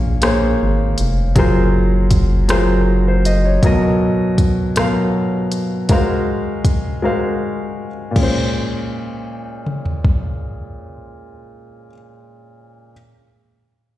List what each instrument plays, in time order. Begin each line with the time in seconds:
Already playing: analog synth bass A#1, grand piano A#3 G#4 C5 C#5
0.22 grand piano A#3 G#4 C5 C#5, cross-stick, closed hi-hat
0.62 analog synth bass G#1
0.98 analog synth bass F1, closed hi-hat
1.35 analog synth bass F#1, grand piano F#3 F4 G#4 A#4 C5, kick, closed hi-hat
2.11 kick, closed hi-hat
2.48 grand piano F#3 F4 G#4 A#4 C5, cross-stick, closed hi-hat
3.08 grand piano C5
3.25 grand piano D#5, closed hi-hat
3.45 grand piano C#5
3.63 grand piano B2 F#3 A#4 D#5, kick, closed hi-hat
4.38 kick, closed hi-hat
4.76 grand piano B2 F#3 A#4 F5, cross-stick, closed hi-hat
5.52 closed hi-hat
5.89 grand piano G#3 F#4 A#4 C5 F5, kick, closed hi-hat
6.65 kick, closed hi-hat
7.02 grand piano G#3 F#4 A#4 C5 F5
8.11 grand piano A#2
8.16 grand piano G#3 C#4, kick, crash
8.23 grand piano C5
9.66 mid tom
9.86 floor tom
10.05 kick